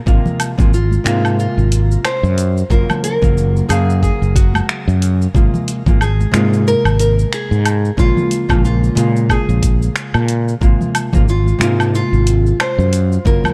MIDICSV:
0, 0, Header, 1, 5, 480
1, 0, Start_track
1, 0, Tempo, 659341
1, 51, Time_signature, 4, 2, 24, 8
1, 9853, End_track
2, 0, Start_track
2, 0, Title_t, "Nylon-string guitar"
2, 0, Program_c, 0, 24
2, 539, Note_on_c, 0, 65, 84
2, 1008, Note_off_c, 0, 65, 0
2, 1017, Note_on_c, 0, 65, 96
2, 1493, Note_on_c, 0, 72, 100
2, 1508, Note_off_c, 0, 65, 0
2, 1970, Note_off_c, 0, 72, 0
2, 1973, Note_on_c, 0, 70, 99
2, 2204, Note_off_c, 0, 70, 0
2, 2213, Note_on_c, 0, 70, 103
2, 2684, Note_off_c, 0, 70, 0
2, 2687, Note_on_c, 0, 68, 93
2, 2924, Note_off_c, 0, 68, 0
2, 2932, Note_on_c, 0, 68, 92
2, 3171, Note_on_c, 0, 66, 79
2, 3179, Note_off_c, 0, 68, 0
2, 3622, Note_off_c, 0, 66, 0
2, 4382, Note_on_c, 0, 68, 96
2, 4827, Note_off_c, 0, 68, 0
2, 4861, Note_on_c, 0, 70, 115
2, 5087, Note_off_c, 0, 70, 0
2, 5096, Note_on_c, 0, 70, 94
2, 5340, Note_off_c, 0, 70, 0
2, 5343, Note_on_c, 0, 68, 94
2, 5788, Note_off_c, 0, 68, 0
2, 5819, Note_on_c, 0, 65, 95
2, 6289, Note_off_c, 0, 65, 0
2, 6297, Note_on_c, 0, 65, 89
2, 6745, Note_off_c, 0, 65, 0
2, 6780, Note_on_c, 0, 68, 87
2, 7466, Note_off_c, 0, 68, 0
2, 8224, Note_on_c, 0, 65, 84
2, 8693, Note_off_c, 0, 65, 0
2, 8701, Note_on_c, 0, 65, 108
2, 9147, Note_off_c, 0, 65, 0
2, 9181, Note_on_c, 0, 72, 102
2, 9627, Note_off_c, 0, 72, 0
2, 9658, Note_on_c, 0, 70, 108
2, 9853, Note_off_c, 0, 70, 0
2, 9853, End_track
3, 0, Start_track
3, 0, Title_t, "Hollow-body jazz guitar"
3, 0, Program_c, 1, 26
3, 43, Note_on_c, 1, 48, 78
3, 49, Note_on_c, 1, 56, 62
3, 51, Note_on_c, 1, 58, 68
3, 55, Note_on_c, 1, 65, 83
3, 392, Note_off_c, 1, 48, 0
3, 393, Note_off_c, 1, 56, 0
3, 395, Note_off_c, 1, 58, 0
3, 397, Note_off_c, 1, 65, 0
3, 419, Note_on_c, 1, 48, 89
3, 424, Note_on_c, 1, 56, 83
3, 428, Note_on_c, 1, 58, 77
3, 432, Note_on_c, 1, 65, 95
3, 508, Note_off_c, 1, 48, 0
3, 511, Note_off_c, 1, 56, 0
3, 513, Note_off_c, 1, 58, 0
3, 515, Note_off_c, 1, 65, 0
3, 758, Note_on_c, 1, 48, 94
3, 765, Note_on_c, 1, 56, 90
3, 774, Note_on_c, 1, 58, 86
3, 780, Note_on_c, 1, 65, 112
3, 1712, Note_off_c, 1, 48, 0
3, 1715, Note_off_c, 1, 56, 0
3, 1720, Note_off_c, 1, 58, 0
3, 1723, Note_off_c, 1, 65, 0
3, 1964, Note_on_c, 1, 49, 100
3, 1967, Note_on_c, 1, 54, 81
3, 1970, Note_on_c, 1, 58, 83
3, 1976, Note_on_c, 1, 65, 108
3, 2312, Note_off_c, 1, 49, 0
3, 2313, Note_off_c, 1, 54, 0
3, 2315, Note_off_c, 1, 58, 0
3, 2318, Note_off_c, 1, 65, 0
3, 2341, Note_on_c, 1, 49, 97
3, 2345, Note_on_c, 1, 54, 84
3, 2349, Note_on_c, 1, 58, 88
3, 2353, Note_on_c, 1, 65, 100
3, 2663, Note_off_c, 1, 49, 0
3, 2665, Note_off_c, 1, 54, 0
3, 2667, Note_off_c, 1, 58, 0
3, 2669, Note_off_c, 1, 65, 0
3, 2683, Note_on_c, 1, 49, 81
3, 2689, Note_on_c, 1, 54, 73
3, 2698, Note_on_c, 1, 58, 71
3, 2704, Note_on_c, 1, 77, 97
3, 3862, Note_off_c, 1, 49, 0
3, 3865, Note_off_c, 1, 54, 0
3, 3870, Note_off_c, 1, 58, 0
3, 3873, Note_off_c, 1, 77, 0
3, 3889, Note_on_c, 1, 48, 78
3, 3892, Note_on_c, 1, 56, 66
3, 3898, Note_on_c, 1, 58, 62
3, 3901, Note_on_c, 1, 65, 91
3, 4234, Note_off_c, 1, 48, 0
3, 4236, Note_off_c, 1, 56, 0
3, 4237, Note_off_c, 1, 58, 0
3, 4240, Note_off_c, 1, 65, 0
3, 4266, Note_on_c, 1, 48, 79
3, 4273, Note_on_c, 1, 56, 70
3, 4274, Note_on_c, 1, 58, 77
3, 4278, Note_on_c, 1, 65, 91
3, 4353, Note_off_c, 1, 48, 0
3, 4354, Note_off_c, 1, 56, 0
3, 4356, Note_off_c, 1, 58, 0
3, 4358, Note_off_c, 1, 65, 0
3, 4597, Note_on_c, 1, 48, 97
3, 4605, Note_on_c, 1, 56, 88
3, 4613, Note_on_c, 1, 58, 87
3, 4620, Note_on_c, 1, 65, 102
3, 5779, Note_off_c, 1, 48, 0
3, 5783, Note_off_c, 1, 56, 0
3, 5787, Note_off_c, 1, 58, 0
3, 5791, Note_off_c, 1, 65, 0
3, 5802, Note_on_c, 1, 49, 89
3, 5807, Note_on_c, 1, 56, 88
3, 5809, Note_on_c, 1, 58, 96
3, 5815, Note_on_c, 1, 65, 87
3, 6151, Note_off_c, 1, 49, 0
3, 6153, Note_off_c, 1, 56, 0
3, 6155, Note_off_c, 1, 58, 0
3, 6156, Note_off_c, 1, 65, 0
3, 6178, Note_on_c, 1, 49, 95
3, 6182, Note_on_c, 1, 56, 82
3, 6185, Note_on_c, 1, 58, 85
3, 6190, Note_on_c, 1, 65, 107
3, 6501, Note_off_c, 1, 49, 0
3, 6503, Note_off_c, 1, 56, 0
3, 6505, Note_off_c, 1, 58, 0
3, 6507, Note_off_c, 1, 65, 0
3, 6517, Note_on_c, 1, 49, 89
3, 6523, Note_on_c, 1, 56, 78
3, 6531, Note_on_c, 1, 58, 73
3, 6538, Note_on_c, 1, 65, 90
3, 7699, Note_off_c, 1, 49, 0
3, 7702, Note_off_c, 1, 56, 0
3, 7706, Note_off_c, 1, 58, 0
3, 7710, Note_off_c, 1, 65, 0
3, 7722, Note_on_c, 1, 48, 81
3, 7727, Note_on_c, 1, 56, 66
3, 7730, Note_on_c, 1, 58, 71
3, 7734, Note_on_c, 1, 65, 90
3, 8071, Note_off_c, 1, 48, 0
3, 8072, Note_off_c, 1, 56, 0
3, 8074, Note_off_c, 1, 58, 0
3, 8077, Note_off_c, 1, 65, 0
3, 8101, Note_on_c, 1, 48, 96
3, 8107, Note_on_c, 1, 56, 67
3, 8108, Note_on_c, 1, 58, 75
3, 8113, Note_on_c, 1, 65, 82
3, 8190, Note_off_c, 1, 48, 0
3, 8191, Note_off_c, 1, 56, 0
3, 8193, Note_off_c, 1, 58, 0
3, 8194, Note_off_c, 1, 65, 0
3, 8435, Note_on_c, 1, 48, 103
3, 8441, Note_on_c, 1, 56, 93
3, 8449, Note_on_c, 1, 58, 90
3, 8457, Note_on_c, 1, 65, 110
3, 9390, Note_off_c, 1, 48, 0
3, 9394, Note_off_c, 1, 56, 0
3, 9398, Note_off_c, 1, 58, 0
3, 9402, Note_off_c, 1, 65, 0
3, 9645, Note_on_c, 1, 49, 95
3, 9649, Note_on_c, 1, 54, 86
3, 9652, Note_on_c, 1, 58, 88
3, 9658, Note_on_c, 1, 65, 95
3, 9853, Note_off_c, 1, 49, 0
3, 9853, Note_off_c, 1, 54, 0
3, 9853, Note_off_c, 1, 58, 0
3, 9853, Note_off_c, 1, 65, 0
3, 9853, End_track
4, 0, Start_track
4, 0, Title_t, "Fretless electric bass"
4, 0, Program_c, 2, 35
4, 51, Note_on_c, 2, 32, 97
4, 136, Note_off_c, 2, 32, 0
4, 428, Note_on_c, 2, 32, 87
4, 708, Note_off_c, 2, 32, 0
4, 771, Note_on_c, 2, 44, 82
4, 1065, Note_off_c, 2, 44, 0
4, 1146, Note_on_c, 2, 32, 85
4, 1428, Note_off_c, 2, 32, 0
4, 1626, Note_on_c, 2, 42, 106
4, 1907, Note_off_c, 2, 42, 0
4, 1968, Note_on_c, 2, 30, 95
4, 2055, Note_off_c, 2, 30, 0
4, 2347, Note_on_c, 2, 30, 86
4, 2628, Note_off_c, 2, 30, 0
4, 2691, Note_on_c, 2, 42, 78
4, 2985, Note_off_c, 2, 42, 0
4, 3071, Note_on_c, 2, 30, 88
4, 3350, Note_off_c, 2, 30, 0
4, 3549, Note_on_c, 2, 42, 104
4, 3829, Note_off_c, 2, 42, 0
4, 3892, Note_on_c, 2, 32, 93
4, 3976, Note_off_c, 2, 32, 0
4, 4268, Note_on_c, 2, 32, 84
4, 4549, Note_off_c, 2, 32, 0
4, 4613, Note_on_c, 2, 44, 81
4, 4906, Note_off_c, 2, 44, 0
4, 4987, Note_on_c, 2, 32, 81
4, 5268, Note_off_c, 2, 32, 0
4, 5468, Note_on_c, 2, 44, 98
4, 5748, Note_off_c, 2, 44, 0
4, 5809, Note_on_c, 2, 34, 99
4, 5895, Note_off_c, 2, 34, 0
4, 6185, Note_on_c, 2, 34, 88
4, 6467, Note_off_c, 2, 34, 0
4, 6529, Note_on_c, 2, 46, 80
4, 6824, Note_off_c, 2, 46, 0
4, 6907, Note_on_c, 2, 34, 90
4, 7188, Note_off_c, 2, 34, 0
4, 7386, Note_on_c, 2, 46, 103
4, 7667, Note_off_c, 2, 46, 0
4, 7728, Note_on_c, 2, 32, 97
4, 7815, Note_off_c, 2, 32, 0
4, 8105, Note_on_c, 2, 32, 91
4, 8387, Note_off_c, 2, 32, 0
4, 8450, Note_on_c, 2, 44, 74
4, 8744, Note_off_c, 2, 44, 0
4, 8828, Note_on_c, 2, 32, 82
4, 9108, Note_off_c, 2, 32, 0
4, 9307, Note_on_c, 2, 42, 102
4, 9588, Note_off_c, 2, 42, 0
4, 9651, Note_on_c, 2, 30, 101
4, 9736, Note_off_c, 2, 30, 0
4, 9853, End_track
5, 0, Start_track
5, 0, Title_t, "Drums"
5, 50, Note_on_c, 9, 36, 125
5, 55, Note_on_c, 9, 69, 45
5, 122, Note_off_c, 9, 36, 0
5, 128, Note_off_c, 9, 69, 0
5, 186, Note_on_c, 9, 64, 89
5, 194, Note_on_c, 9, 69, 22
5, 259, Note_off_c, 9, 64, 0
5, 267, Note_off_c, 9, 69, 0
5, 289, Note_on_c, 9, 42, 93
5, 289, Note_on_c, 9, 77, 74
5, 294, Note_on_c, 9, 69, 89
5, 362, Note_off_c, 9, 42, 0
5, 362, Note_off_c, 9, 77, 0
5, 367, Note_off_c, 9, 69, 0
5, 427, Note_on_c, 9, 36, 107
5, 429, Note_on_c, 9, 64, 95
5, 433, Note_on_c, 9, 69, 36
5, 500, Note_off_c, 9, 36, 0
5, 502, Note_off_c, 9, 64, 0
5, 506, Note_off_c, 9, 69, 0
5, 536, Note_on_c, 9, 69, 44
5, 609, Note_off_c, 9, 69, 0
5, 662, Note_on_c, 9, 63, 58
5, 672, Note_on_c, 9, 69, 23
5, 734, Note_off_c, 9, 63, 0
5, 745, Note_off_c, 9, 69, 0
5, 770, Note_on_c, 9, 26, 80
5, 770, Note_on_c, 9, 42, 87
5, 775, Note_on_c, 9, 69, 82
5, 843, Note_off_c, 9, 26, 0
5, 843, Note_off_c, 9, 42, 0
5, 848, Note_off_c, 9, 69, 0
5, 909, Note_on_c, 9, 77, 65
5, 914, Note_on_c, 9, 69, 33
5, 982, Note_off_c, 9, 77, 0
5, 987, Note_off_c, 9, 69, 0
5, 1015, Note_on_c, 9, 69, 44
5, 1088, Note_off_c, 9, 69, 0
5, 1154, Note_on_c, 9, 69, 22
5, 1227, Note_off_c, 9, 69, 0
5, 1251, Note_on_c, 9, 42, 85
5, 1256, Note_on_c, 9, 69, 78
5, 1324, Note_off_c, 9, 42, 0
5, 1329, Note_off_c, 9, 69, 0
5, 1393, Note_on_c, 9, 69, 34
5, 1466, Note_off_c, 9, 69, 0
5, 1489, Note_on_c, 9, 26, 83
5, 1489, Note_on_c, 9, 77, 76
5, 1494, Note_on_c, 9, 69, 47
5, 1562, Note_off_c, 9, 26, 0
5, 1562, Note_off_c, 9, 77, 0
5, 1567, Note_off_c, 9, 69, 0
5, 1633, Note_on_c, 9, 69, 23
5, 1706, Note_off_c, 9, 69, 0
5, 1731, Note_on_c, 9, 42, 88
5, 1736, Note_on_c, 9, 69, 82
5, 1804, Note_off_c, 9, 42, 0
5, 1809, Note_off_c, 9, 69, 0
5, 1874, Note_on_c, 9, 69, 33
5, 1946, Note_off_c, 9, 69, 0
5, 1969, Note_on_c, 9, 36, 127
5, 1977, Note_on_c, 9, 69, 43
5, 2042, Note_off_c, 9, 36, 0
5, 2049, Note_off_c, 9, 69, 0
5, 2105, Note_on_c, 9, 64, 77
5, 2108, Note_on_c, 9, 63, 64
5, 2109, Note_on_c, 9, 77, 74
5, 2114, Note_on_c, 9, 69, 23
5, 2178, Note_off_c, 9, 64, 0
5, 2181, Note_off_c, 9, 63, 0
5, 2182, Note_off_c, 9, 77, 0
5, 2187, Note_off_c, 9, 69, 0
5, 2212, Note_on_c, 9, 42, 90
5, 2217, Note_on_c, 9, 69, 85
5, 2285, Note_off_c, 9, 42, 0
5, 2290, Note_off_c, 9, 69, 0
5, 2348, Note_on_c, 9, 36, 110
5, 2350, Note_on_c, 9, 64, 95
5, 2356, Note_on_c, 9, 69, 35
5, 2420, Note_off_c, 9, 36, 0
5, 2422, Note_off_c, 9, 64, 0
5, 2428, Note_off_c, 9, 69, 0
5, 2458, Note_on_c, 9, 69, 45
5, 2530, Note_off_c, 9, 69, 0
5, 2595, Note_on_c, 9, 69, 23
5, 2668, Note_off_c, 9, 69, 0
5, 2694, Note_on_c, 9, 42, 82
5, 2694, Note_on_c, 9, 77, 76
5, 2699, Note_on_c, 9, 69, 82
5, 2767, Note_off_c, 9, 42, 0
5, 2767, Note_off_c, 9, 77, 0
5, 2772, Note_off_c, 9, 69, 0
5, 2838, Note_on_c, 9, 69, 32
5, 2910, Note_off_c, 9, 69, 0
5, 2931, Note_on_c, 9, 36, 60
5, 2939, Note_on_c, 9, 69, 45
5, 3004, Note_off_c, 9, 36, 0
5, 3012, Note_off_c, 9, 69, 0
5, 3077, Note_on_c, 9, 69, 22
5, 3150, Note_off_c, 9, 69, 0
5, 3172, Note_on_c, 9, 36, 110
5, 3176, Note_on_c, 9, 42, 85
5, 3181, Note_on_c, 9, 69, 78
5, 3245, Note_off_c, 9, 36, 0
5, 3249, Note_off_c, 9, 42, 0
5, 3254, Note_off_c, 9, 69, 0
5, 3306, Note_on_c, 9, 63, 66
5, 3313, Note_on_c, 9, 77, 71
5, 3318, Note_on_c, 9, 69, 33
5, 3379, Note_off_c, 9, 63, 0
5, 3386, Note_off_c, 9, 77, 0
5, 3391, Note_off_c, 9, 69, 0
5, 3415, Note_on_c, 9, 26, 78
5, 3420, Note_on_c, 9, 69, 44
5, 3488, Note_off_c, 9, 26, 0
5, 3493, Note_off_c, 9, 69, 0
5, 3558, Note_on_c, 9, 69, 24
5, 3631, Note_off_c, 9, 69, 0
5, 3656, Note_on_c, 9, 42, 87
5, 3661, Note_on_c, 9, 69, 87
5, 3728, Note_off_c, 9, 42, 0
5, 3733, Note_off_c, 9, 69, 0
5, 3798, Note_on_c, 9, 69, 34
5, 3871, Note_off_c, 9, 69, 0
5, 3892, Note_on_c, 9, 36, 124
5, 3900, Note_on_c, 9, 69, 45
5, 3965, Note_off_c, 9, 36, 0
5, 3973, Note_off_c, 9, 69, 0
5, 4032, Note_on_c, 9, 64, 74
5, 4038, Note_on_c, 9, 69, 22
5, 4104, Note_off_c, 9, 64, 0
5, 4111, Note_off_c, 9, 69, 0
5, 4134, Note_on_c, 9, 42, 84
5, 4139, Note_on_c, 9, 69, 82
5, 4207, Note_off_c, 9, 42, 0
5, 4212, Note_off_c, 9, 69, 0
5, 4269, Note_on_c, 9, 36, 107
5, 4270, Note_on_c, 9, 64, 87
5, 4277, Note_on_c, 9, 69, 32
5, 4342, Note_off_c, 9, 36, 0
5, 4343, Note_off_c, 9, 64, 0
5, 4350, Note_off_c, 9, 69, 0
5, 4375, Note_on_c, 9, 77, 73
5, 4380, Note_on_c, 9, 69, 40
5, 4447, Note_off_c, 9, 77, 0
5, 4452, Note_off_c, 9, 69, 0
5, 4516, Note_on_c, 9, 63, 65
5, 4516, Note_on_c, 9, 69, 22
5, 4589, Note_off_c, 9, 63, 0
5, 4589, Note_off_c, 9, 69, 0
5, 4613, Note_on_c, 9, 26, 74
5, 4613, Note_on_c, 9, 42, 82
5, 4618, Note_on_c, 9, 69, 80
5, 4686, Note_off_c, 9, 26, 0
5, 4686, Note_off_c, 9, 42, 0
5, 4691, Note_off_c, 9, 69, 0
5, 4757, Note_on_c, 9, 69, 31
5, 4829, Note_off_c, 9, 69, 0
5, 4859, Note_on_c, 9, 69, 42
5, 4932, Note_off_c, 9, 69, 0
5, 4990, Note_on_c, 9, 77, 74
5, 4995, Note_on_c, 9, 69, 21
5, 5062, Note_off_c, 9, 77, 0
5, 5067, Note_off_c, 9, 69, 0
5, 5092, Note_on_c, 9, 42, 83
5, 5097, Note_on_c, 9, 69, 74
5, 5165, Note_off_c, 9, 42, 0
5, 5170, Note_off_c, 9, 69, 0
5, 5233, Note_on_c, 9, 69, 33
5, 5306, Note_off_c, 9, 69, 0
5, 5333, Note_on_c, 9, 26, 77
5, 5338, Note_on_c, 9, 69, 46
5, 5406, Note_off_c, 9, 26, 0
5, 5411, Note_off_c, 9, 69, 0
5, 5476, Note_on_c, 9, 69, 22
5, 5548, Note_off_c, 9, 69, 0
5, 5573, Note_on_c, 9, 42, 91
5, 5573, Note_on_c, 9, 77, 83
5, 5578, Note_on_c, 9, 69, 80
5, 5645, Note_off_c, 9, 42, 0
5, 5645, Note_off_c, 9, 77, 0
5, 5650, Note_off_c, 9, 69, 0
5, 5715, Note_on_c, 9, 69, 32
5, 5787, Note_off_c, 9, 69, 0
5, 5808, Note_on_c, 9, 36, 118
5, 5816, Note_on_c, 9, 69, 42
5, 5881, Note_off_c, 9, 36, 0
5, 5889, Note_off_c, 9, 69, 0
5, 5949, Note_on_c, 9, 64, 78
5, 5954, Note_on_c, 9, 63, 61
5, 5954, Note_on_c, 9, 69, 20
5, 6022, Note_off_c, 9, 64, 0
5, 6027, Note_off_c, 9, 63, 0
5, 6027, Note_off_c, 9, 69, 0
5, 6050, Note_on_c, 9, 42, 86
5, 6055, Note_on_c, 9, 69, 81
5, 6123, Note_off_c, 9, 42, 0
5, 6128, Note_off_c, 9, 69, 0
5, 6184, Note_on_c, 9, 64, 79
5, 6185, Note_on_c, 9, 36, 101
5, 6188, Note_on_c, 9, 77, 77
5, 6193, Note_on_c, 9, 69, 32
5, 6257, Note_off_c, 9, 64, 0
5, 6258, Note_off_c, 9, 36, 0
5, 6261, Note_off_c, 9, 77, 0
5, 6266, Note_off_c, 9, 69, 0
5, 6296, Note_on_c, 9, 69, 42
5, 6369, Note_off_c, 9, 69, 0
5, 6433, Note_on_c, 9, 69, 22
5, 6506, Note_off_c, 9, 69, 0
5, 6530, Note_on_c, 9, 42, 90
5, 6535, Note_on_c, 9, 69, 71
5, 6603, Note_off_c, 9, 42, 0
5, 6608, Note_off_c, 9, 69, 0
5, 6672, Note_on_c, 9, 69, 30
5, 6744, Note_off_c, 9, 69, 0
5, 6767, Note_on_c, 9, 36, 55
5, 6770, Note_on_c, 9, 77, 78
5, 6775, Note_on_c, 9, 69, 41
5, 6840, Note_off_c, 9, 36, 0
5, 6842, Note_off_c, 9, 77, 0
5, 6847, Note_off_c, 9, 69, 0
5, 6911, Note_on_c, 9, 69, 20
5, 6984, Note_off_c, 9, 69, 0
5, 7007, Note_on_c, 9, 36, 98
5, 7009, Note_on_c, 9, 42, 86
5, 7014, Note_on_c, 9, 69, 70
5, 7080, Note_off_c, 9, 36, 0
5, 7082, Note_off_c, 9, 42, 0
5, 7087, Note_off_c, 9, 69, 0
5, 7152, Note_on_c, 9, 69, 30
5, 7225, Note_off_c, 9, 69, 0
5, 7248, Note_on_c, 9, 26, 71
5, 7253, Note_on_c, 9, 69, 44
5, 7321, Note_off_c, 9, 26, 0
5, 7326, Note_off_c, 9, 69, 0
5, 7384, Note_on_c, 9, 77, 75
5, 7389, Note_on_c, 9, 69, 20
5, 7457, Note_off_c, 9, 77, 0
5, 7462, Note_off_c, 9, 69, 0
5, 7487, Note_on_c, 9, 42, 94
5, 7492, Note_on_c, 9, 69, 73
5, 7560, Note_off_c, 9, 42, 0
5, 7565, Note_off_c, 9, 69, 0
5, 7631, Note_on_c, 9, 69, 32
5, 7704, Note_off_c, 9, 69, 0
5, 7728, Note_on_c, 9, 36, 118
5, 7735, Note_on_c, 9, 69, 39
5, 7800, Note_off_c, 9, 36, 0
5, 7808, Note_off_c, 9, 69, 0
5, 7868, Note_on_c, 9, 64, 69
5, 7873, Note_on_c, 9, 69, 20
5, 7941, Note_off_c, 9, 64, 0
5, 7946, Note_off_c, 9, 69, 0
5, 7970, Note_on_c, 9, 42, 93
5, 7970, Note_on_c, 9, 77, 89
5, 7975, Note_on_c, 9, 69, 80
5, 8043, Note_off_c, 9, 42, 0
5, 8043, Note_off_c, 9, 77, 0
5, 8048, Note_off_c, 9, 69, 0
5, 8100, Note_on_c, 9, 64, 84
5, 8106, Note_on_c, 9, 36, 93
5, 8112, Note_on_c, 9, 69, 32
5, 8173, Note_off_c, 9, 64, 0
5, 8179, Note_off_c, 9, 36, 0
5, 8185, Note_off_c, 9, 69, 0
5, 8216, Note_on_c, 9, 69, 41
5, 8289, Note_off_c, 9, 69, 0
5, 8346, Note_on_c, 9, 63, 56
5, 8354, Note_on_c, 9, 69, 21
5, 8419, Note_off_c, 9, 63, 0
5, 8427, Note_off_c, 9, 69, 0
5, 8451, Note_on_c, 9, 26, 79
5, 8451, Note_on_c, 9, 42, 88
5, 8456, Note_on_c, 9, 69, 73
5, 8524, Note_off_c, 9, 26, 0
5, 8524, Note_off_c, 9, 42, 0
5, 8529, Note_off_c, 9, 69, 0
5, 8590, Note_on_c, 9, 77, 78
5, 8595, Note_on_c, 9, 69, 29
5, 8663, Note_off_c, 9, 77, 0
5, 8668, Note_off_c, 9, 69, 0
5, 8698, Note_on_c, 9, 69, 39
5, 8771, Note_off_c, 9, 69, 0
5, 8833, Note_on_c, 9, 69, 20
5, 8906, Note_off_c, 9, 69, 0
5, 8931, Note_on_c, 9, 42, 86
5, 8936, Note_on_c, 9, 69, 72
5, 9004, Note_off_c, 9, 42, 0
5, 9009, Note_off_c, 9, 69, 0
5, 9074, Note_on_c, 9, 69, 31
5, 9147, Note_off_c, 9, 69, 0
5, 9172, Note_on_c, 9, 26, 79
5, 9172, Note_on_c, 9, 77, 83
5, 9177, Note_on_c, 9, 69, 44
5, 9245, Note_off_c, 9, 26, 0
5, 9245, Note_off_c, 9, 77, 0
5, 9250, Note_off_c, 9, 69, 0
5, 9315, Note_on_c, 9, 69, 21
5, 9388, Note_off_c, 9, 69, 0
5, 9411, Note_on_c, 9, 42, 97
5, 9416, Note_on_c, 9, 69, 71
5, 9484, Note_off_c, 9, 42, 0
5, 9489, Note_off_c, 9, 69, 0
5, 9553, Note_on_c, 9, 69, 31
5, 9626, Note_off_c, 9, 69, 0
5, 9650, Note_on_c, 9, 36, 117
5, 9658, Note_on_c, 9, 69, 44
5, 9723, Note_off_c, 9, 36, 0
5, 9730, Note_off_c, 9, 69, 0
5, 9784, Note_on_c, 9, 63, 61
5, 9785, Note_on_c, 9, 64, 72
5, 9792, Note_on_c, 9, 77, 83
5, 9797, Note_on_c, 9, 69, 21
5, 9853, Note_off_c, 9, 63, 0
5, 9853, Note_off_c, 9, 64, 0
5, 9853, Note_off_c, 9, 69, 0
5, 9853, Note_off_c, 9, 77, 0
5, 9853, End_track
0, 0, End_of_file